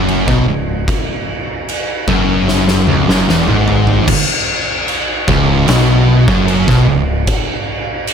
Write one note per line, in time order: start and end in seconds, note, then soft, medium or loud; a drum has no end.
0.00 0.25 F#1 medium
0.00 0.27 F#2 loud
0.09 crash medium
0.27 0.46 B1 loud
0.27 0.46 B2 loud
0.27 kick loud
0.48 0.86 C#1 medium
0.48 0.80 C#2 medium
0.88 kick loud
0.88 crash medium
1.69 crash medium
2.07 2.84 F#1 medium
2.07 2.87 F#2 loud
2.07 kick loud
2.48 snare medium
2.68 snare medium
2.87 3.07 C#1 medium
2.87 3.07 C#2 loud
2.87 mid tom medium
3.08 3.27 F#1 medium
3.08 3.27 F#2 loud
3.08 snare medium
3.28 3.47 E1 loud
3.28 3.47 E2 loud
3.28 snare medium
3.47 4.05 G#1 medium
3.47 4.07 G#2 medium
3.47 mid tom medium
3.68 floor tom loud
3.87 floor tom medium
4.08 kick loud
4.08 crash loud
4.08 crash medium
4.88 crash medium
5.28 5.65 C#1 medium
5.28 5.67 C#2 loud
5.28 kick loud
5.68 6.25 B1 loud
5.68 6.27 B2 loud
5.68 snare loud
5.68 crash medium
6.28 6.65 F#1 medium
6.28 6.67 F#2 loud
6.28 kick loud
6.48 crash medium
6.68 6.87 B1 loud
6.68 6.87 B2 loud
6.68 kick loud
6.68 snare soft
6.88 7.26 C#1 medium
6.88 7.20 C#2 medium
7.27 kick loud
7.27 crash medium
8.07 crash medium